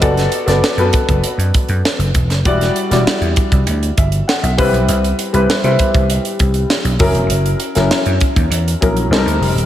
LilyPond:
<<
  \new Staff \with { instrumentName = "Grand piano" } { \time 4/4 \key e \minor \tempo 4 = 99 << { r1 | r2 r8 e''8 fis''16 e''8 r16 | r1 | r1 | } \\ { <b fis' a' d''>8 r16 <b fis' a' d''>16 r16 <b fis' a' b'>4~ <b fis' a' b'>16 r4. | <g e' fis' d''>8 r16 <g e' fis' d''>4 r4. r16 <g c' e' b'>8~ | <g c' e' b'>8 r16 <g c' e' b'>16 r16 <g c' e' b'>4~ <g c' e' b'>16 r4 <fis cis' e' ais'>8~ | <fis cis' e' ais'>8 r16 <fis cis' e' ais'>4 r8. <fis cis' e' ais'>8 <g c' ees' a' bes'>8. r16 | } >> }
  \new Staff \with { instrumentName = "Slap bass" } { \clef bass \time 4/4 \key e \minor fis,,8 r16 fis,,16 r16 fis,16 r16 fis,,16 r16 fis,16 r16 fis,16 r16 fis,,16 e,,16 fis,,16 | e,,8 r16 e,,16 r16 e,16 r16 c,16 d,8 g,,8 r16 b,,16 c,16 b,,16 | c,8 r16 c,16 r16 c16 r16 c,8 r16 c,8 r16 b,,16 fis,,16 e,,16 | fis,,8 r16 fis,,16 r16 fis,16 r16 dis,16 e,8 ais,,8 c,16 d,16 f,,16 ees,,16 | }
  \new DrumStaff \with { instrumentName = "Drums" } \drummode { \time 4/4 <hh bd>16 <hh sn>16 hh16 <hh sn>16 sn16 hh16 <hh bd>16 <hh bd>16 hh16 hh16 <hh bd>16 hh16 sn16 hh16 <hh bd>16 <hh sn>16 | <hh bd>16 <hh sn>16 hh16 <hh sn>16 sn16 hh16 <hh bd>16 <hh bd>16 hh16 hh16 <hh bd>16 hh16 sn16 hh16 <hho bd>16 hh16 | hh16 hh16 hh16 hh16 sn16 hh16 <hh bd>16 <hh bd>16 hh16 hh16 <hh bd>16 hh16 sn16 hh16 <hho bd>16 hh16 | hh16 hh16 hh16 <hh sn>16 sn16 hh16 <hh bd>16 <hh bd>16 hh16 hh16 <hh bd>16 hh16 sn16 hh16 hho16 hh16 | }
>>